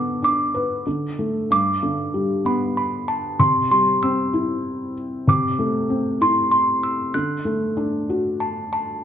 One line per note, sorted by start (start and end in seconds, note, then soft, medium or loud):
0.00 0.82 D3 medium
0.00 0.83 B3 medium
0.00 0.18 D6 loud
0.22 0.84 D4 soft
0.22 1.15 D6 medium
0.54 0.85 B4 medium
0.87 1.48 D3 medium
1.19 1.49 A3 soft
1.50 3.36 G2 medium
1.50 2.48 D6 loud
1.83 3.05 D3 medium
2.14 3.36 G3 soft
2.45 3.36 B3 medium
2.45 2.60 B5 medium
2.77 2.91 B5 medium
3.08 3.40 A5 medium
3.39 5.23 C3 medium
3.39 3.70 C6 loud
3.71 4.92 G3 medium
3.71 4.00 C6 medium
4.03 5.24 C4 medium
4.03 4.92 E6 medium
4.33 5.24 E4 medium
5.27 7.10 C3 medium
5.27 6.17 D6 medium
5.59 6.79 A3 medium
5.90 7.10 C4 medium
6.21 7.11 E4 medium
6.21 6.50 C6 medium
6.52 6.84 C6 medium
6.83 7.15 E6 medium
7.14 9.01 D3 medium
7.14 8.37 F#6 loud
7.45 8.69 A3 medium
7.77 9.01 D4 soft
8.09 9.02 F#4 soft
8.40 8.72 A5 medium
8.73 9.04 A5 medium